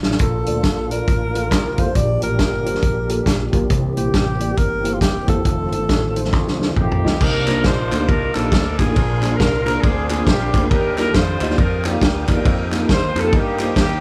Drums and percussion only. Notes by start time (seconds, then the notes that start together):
0.03 snare
0.11 snare
0.19 kick, closed hi-hat
0.46 closed hi-hat
0.63 kick, snare, closed hi-hat
0.91 closed hi-hat
1.08 kick, closed hi-hat
1.35 closed hi-hat
1.51 kick, snare, closed hi-hat
1.78 kick, closed hi-hat
1.95 kick, closed hi-hat
2.22 closed hi-hat
2.39 kick, snare, closed hi-hat
2.66 closed hi-hat
2.74 snare
2.82 kick, closed hi-hat
3.09 closed hi-hat
3.26 kick, snare, closed hi-hat
3.53 kick, closed hi-hat
3.70 kick, closed hi-hat
3.97 closed hi-hat
4.14 kick, snare, closed hi-hat
4.40 closed hi-hat
4.57 kick, closed hi-hat
4.85 closed hi-hat
5.01 kick, snare, closed hi-hat
5.28 kick, closed hi-hat
5.45 kick, closed hi-hat
5.72 closed hi-hat
5.89 kick, snare, closed hi-hat
6.16 closed hi-hat
6.24 snare
6.32 kick, snare
6.48 snare
6.62 snare
6.76 kick, mid tom
6.92 floor tom
7.06 snare
7.21 kick, crash
7.48 snare, clap, ride
7.64 kick, snare, ride
7.92 clap, ride
8.09 kick, ride
8.35 clap, ride
8.52 kick, snare, ride
8.79 kick, clap, ride
8.96 kick, ride
9.23 snare, clap, ride
9.40 kick, snare, ride
9.67 clap, ride
9.83 kick, ride
10.10 clap, ride
10.27 kick, snare, ride
10.54 kick, clap, ride
10.71 kick, ride
10.98 snare, clap, ride
11.14 kick, snare, ride
11.41 clap, ride
11.50 snare
11.58 kick, ride
11.85 clap, ride
12.02 kick, snare, ride
12.28 kick, clap, ride
12.45 kick, ride
12.72 snare, clap, ride
12.89 kick, snare, ride
13.16 clap, ride
13.33 kick, ride
13.59 clap, ride
13.76 kick, snare, ride